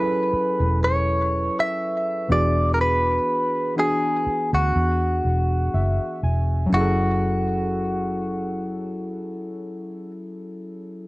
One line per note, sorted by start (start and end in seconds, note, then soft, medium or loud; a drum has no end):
0.00 2.31 F#3 medium
0.00 2.32 C#4 medium
0.00 2.31 E4 medium
0.00 1.36 G#4 medium
0.00 2.32 A4 medium
0.00 0.79 B4 medium
0.00 1.39 B4 medium
0.00 2.31 G#5 medium
0.33 muted fingered electric bass stroke soft
0.60 1.48 E1 medium
0.84 1.60 C#5 medium
1.60 2.32 E5 loud
2.28 3.18 E1 loud
2.28 3.49 E3 medium
2.28 3.49 B3 medium
2.28 3.50 D4 medium
2.28 3.50 F#4 medium
2.28 3.50 G#4 medium
2.28 2.74 D5 medium
2.74 2.80 A#4 medium
2.81 3.74 B4 medium
3.76 5.28 E3 medium
3.76 5.28 B3 medium
3.76 5.29 D4 medium
3.76 5.29 F#4 medium
3.76 5.30 G#4 medium
3.76 4.50 G#4 medium
4.26 muted fingered electric bass stroke soft
4.53 4.73 D2 medium
4.53 6.20 F#4 medium
4.76 5.20 E2 loud
5.25 5.69 E1 medium
5.74 5.98 F#1 medium
5.74 6.20 E5 medium
6.23 6.67 E1 medium
6.23 6.69 G#5 medium
6.66 10.03 F#3 medium
6.66 10.06 C#4 medium
6.72 10.09 F#1 medium
6.72 10.10 E4 medium
6.72 10.11 F#4 medium
6.76 10.13 G#4 medium
6.76 10.17 A4 medium